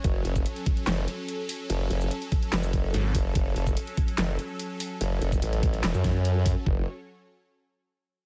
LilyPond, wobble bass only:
\new Staff \with { instrumentName = "Wobble bass" } { \clef bass \time 4/4 \key fis \minor \tempo 4 = 145 fis,,8 fis,,8 r4 fis,,8 r4. | fis,,8 fis,,8 r4 fis,,4 r8 fis,,8 | fis,,8 fis,,8 r4 fis,,8 r4. | fis,,8 fis,,8 a,,4 e,,16 fis,4. r16 |
fis,,8 r2. r8 | }